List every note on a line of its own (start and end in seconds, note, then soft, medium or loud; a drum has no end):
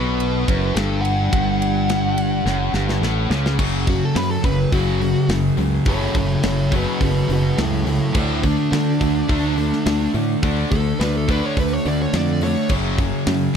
0.00 0.44 B1 loud
0.00 0.47 B2 loud
0.00 0.77 B4 loud
0.20 ride medium
0.48 0.74 F#1 medium
0.48 0.75 F#2 loud
0.48 kick loud
0.48 ride medium
0.75 1.28 G1 medium
0.75 1.32 G2 loud
0.75 1.04 A4 medium
0.75 snare loud
0.75 ride medium
1.01 2.97 F#5 loud
1.01 ride medium
1.33 2.42 G1 medium
1.33 2.45 G2 loud
1.33 kick loud
1.33 ride medium
1.62 ride medium
1.89 snare loud
1.89 ride loud
2.18 ride medium
2.46 2.72 F#1 medium
2.46 2.74 F#2 loud
2.46 snare medium
2.73 3.00 G1 medium
2.73 3.02 G2 loud
2.73 snare medium
2.89 snare medium
3.01 3.28 A1 medium
3.01 3.29 A2 loud
3.01 snare medium
3.30 3.57 C#2 loud
3.30 3.58 C#3 loud
3.30 snare loud
3.46 snare medium
3.58 4.00 F#1 medium
3.58 3.86 F#2 medium
3.58 3.86 C#3 medium
3.58 3.87 F#3 loud
3.58 kick loud
3.58 crash loud
3.86 4.14 F#2 medium
3.86 4.13 C#3 medium
3.86 4.15 F#3 loud
3.86 4.05 F#4 medium
3.86 kick medium
3.86 open hi-hat medium
4.05 4.17 A4 medium
4.14 4.42 F#2 medium
4.14 4.36 F#2 medium
4.14 4.42 C#3 medium
4.14 4.43 F#3 medium
4.14 4.30 B4 medium
4.14 snare loud
4.14 open hi-hat medium
4.31 4.44 A4 medium
4.42 4.64 F#1 medium
4.42 4.70 F#2 medium
4.42 4.71 C#3 medium
4.42 4.72 F#3 medium
4.42 4.73 B4 medium
4.42 kick medium
4.42 open hi-hat medium
4.71 5.13 F#1 medium
4.71 4.99 F#2 medium
4.71 5.01 C#3 loud
4.71 5.02 F#3 loud
4.71 5.28 F#4 medium
4.71 kick medium
4.71 open hi-hat medium
5.01 5.28 F#2 medium
5.01 5.29 C#3 medium
5.01 5.30 F#3 medium
5.01 open hi-hat medium
5.29 5.50 F#1 medium
5.29 5.57 F#2 medium
5.29 5.57 C#3 medium
5.29 5.59 F#3 medium
5.29 snare loud
5.29 open hi-hat medium
5.57 5.78 C#2 medium
5.57 5.85 F#2 medium
5.57 5.86 C#3 medium
5.57 5.87 F#3 medium
5.57 open hi-hat medium
5.85 6.07 F#1 medium
5.85 6.14 F#2 medium
5.85 6.15 C#3 loud
5.85 6.16 F#3 loud
5.85 6.16 A4 medium
5.85 6.15 C#5 medium
5.85 kick loud
5.85 open hi-hat medium
6.15 6.35 F#1 medium
6.15 6.43 F#2 medium
6.15 6.43 C#3 medium
6.15 6.44 F#3 medium
6.15 6.43 A4 medium
6.15 6.44 C#5 medium
6.15 kick medium
6.15 open hi-hat medium
6.43 6.85 F#1 loud
6.43 6.71 F#2 medium
6.43 6.72 C#3 medium
6.43 6.73 F#3 medium
6.43 6.71 A4 medium
6.43 6.73 C#5 loud
6.43 snare loud
6.43 open hi-hat medium
6.72 7.00 F#2 medium
6.72 7.01 C#3 medium
6.72 7.02 F#3 medium
6.72 kick medium
6.72 open hi-hat medium
6.76 7.01 F#4 medium
6.76 7.02 B4 medium
7.01 7.21 F#1 medium
7.01 7.28 F#2 loud
7.01 7.29 C#3 loud
7.01 7.31 F#3 loud
7.01 7.29 F#4 medium
7.01 kick medium
7.01 open hi-hat medium
7.05 7.30 B4 medium
7.29 7.50 F#1 medium
7.29 7.57 F#2 medium
7.29 7.58 C#3 medium
7.29 7.59 F#3 medium
7.29 7.57 F#4 medium
7.29 open hi-hat medium
7.34 7.59 B4 medium
7.58 7.99 C#2 medium
7.58 7.85 F#2 medium
7.58 7.86 C#3 medium
7.58 7.87 F#3 medium
7.58 7.85 E4 medium
7.58 7.87 A4 medium
7.58 snare loud
7.58 open hi-hat medium
7.86 8.13 F#2 medium
7.86 8.13 C#3 medium
7.86 8.16 F#3 medium
7.86 8.14 E4 medium
7.86 8.15 A4 medium
7.86 open hi-hat medium
8.15 8.56 D2 medium
8.15 8.43 D3 loud
8.15 8.44 A3 loud
8.15 8.45 D4 loud
8.15 8.42 E4 medium
8.15 8.43 A4 medium
8.15 kick loud
8.15 crash medium
8.43 8.73 D3 medium
8.43 8.74 A3 loud
8.43 10.11 D4 medium
8.43 8.74 D4 medium
8.43 kick medium
8.43 open hi-hat medium
8.72 8.92 D3 loud
8.72 9.01 D3 medium
8.72 9.02 A3 medium
8.72 9.02 D4 medium
8.72 snare loud
8.72 open hi-hat medium
9.01 9.21 D2 medium
9.01 9.28 D3 medium
9.01 9.30 A3 medium
9.01 9.30 D4 medium
9.01 kick medium
9.01 open hi-hat medium
9.29 9.70 D2 medium
9.29 9.57 D3 medium
9.29 9.58 A3 medium
9.29 9.59 D4 loud
9.29 kick medium
9.29 open hi-hat medium
9.58 9.85 D3 medium
9.58 9.86 A3 medium
9.58 9.86 D4 medium
9.58 open hi-hat medium
9.73 snare soft
9.86 10.06 D2 medium
9.86 10.13 D3 medium
9.86 10.15 A3 medium
9.86 10.14 D4 medium
9.86 snare loud
9.86 open hi-hat medium
10.14 10.35 A2 medium
10.14 10.41 D3 medium
10.14 10.43 A3 medium
10.14 10.43 D4 loud
10.14 open hi-hat medium
10.43 10.63 D2 medium
10.43 10.70 D3 medium
10.43 10.72 A3 medium
10.43 10.71 D4 loud
10.43 kick loud
10.43 open hi-hat medium
10.71 10.92 D2 medium
10.71 10.99 D3 medium
10.71 11.01 A3 loud
10.71 11.01 D4 loud
10.71 10.99 A4 loud
10.71 kick medium
10.71 open hi-hat medium
11.00 11.40 D2 loud
11.00 11.28 D3 medium
11.00 11.30 A3 medium
11.00 11.30 D4 medium
11.00 11.13 B4 loud
11.00 snare loud
11.00 open hi-hat medium
11.17 11.30 A4 loud
11.29 11.56 D3 medium
11.29 11.58 A3 medium
11.29 11.57 D4 medium
11.29 11.46 B4 medium
11.29 kick medium
11.29 open hi-hat medium
11.46 11.59 C#5 loud
11.57 11.77 D2 medium
11.57 11.85 D3 medium
11.57 11.87 A3 loud
11.57 11.87 D4 loud
11.57 11.73 B4 medium
11.57 kick medium
11.57 open hi-hat medium
11.73 11.86 C#5 medium
11.85 12.06 D2 medium
11.85 12.14 D3 medium
11.85 12.16 A3 medium
11.85 12.15 D4 medium
11.85 12.00 D5 loud
11.85 open hi-hat medium
12.02 12.17 C#5 medium
12.13 12.54 F2 medium
12.13 12.44 D3 medium
12.13 12.45 A3 medium
12.13 12.45 D4 loud
12.13 12.43 D5 medium
12.13 snare loud
12.13 open hi-hat medium
12.41 12.70 D3 medium
12.41 12.70 C#5 medium
12.41 open hi-hat medium
12.45 12.73 A3 medium
12.45 12.71 D4 medium
12.69 13.11 F#1 medium
12.69 13.01 F#2 medium
12.69 kick loud
12.69 crash medium
12.74 13.01 C#3 medium
12.74 13.02 F#3 loud
12.98 13.28 F#2 medium
12.98 13.29 C#3 medium
12.98 kick medium
12.98 open hi-hat medium
13.02 13.30 F#3 loud
13.26 13.47 F#2 medium
13.26 13.56 F#2 medium
13.26 13.56 C#3 medium
13.26 13.57 F#3 medium
13.26 snare loud
13.26 open hi-hat medium